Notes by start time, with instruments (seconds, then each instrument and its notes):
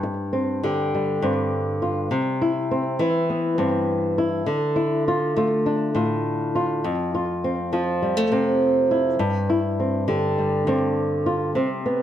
Already playing: nylon-string guitar G2 C4
0.03 muted nylon-string guitar stroke
0.33 nylon-string guitar C4
0.63 nylon-string guitar D3 G4
0.94 nylon-string guitar G3
1.22 nylon-string guitar G2 C4
1.82 nylon-string guitar F4
2.11 nylon-string guitar C3
2.42 nylon-string guitar E4
2.71 nylon-string guitar C4
2.99 nylon-string guitar E3 E4
3.30 nylon-string guitar B3
3.58 nylon-string guitar G2 C4
4.18 nylon-string guitar E4
4.46 nylon-string guitar D3
4.76 nylon-string guitar E4
5.08 nylon-string guitar F4
5.36 nylon-string guitar A3 F4
5.66 nylon-string guitar D4
5.95 nylon-string guitar A2 F4
6.55 nylon-string guitar F4
6.84 nylon-string guitar F2
7.15 nylon-string guitar F4
7.44 nylon-string guitar C4
7.73 nylon-string guitar F3 F4
8.02 nylon-string guitar G3
8.17 nylon-string guitar A3
8.32 nylon-string guitar C3 C4
8.91 nylon-string guitar E4
9.19 nylon-string guitar G2
9.49 nylon-string guitar E4
9.80 nylon-string guitar C4
10.08 nylon-string guitar D3 G4
10.38 nylon-string guitar G3
10.67 nylon-string guitar G2 C4
11.26 nylon-string guitar F4
11.55 nylon-string guitar C3 C4
11.86 nylon-string guitar B3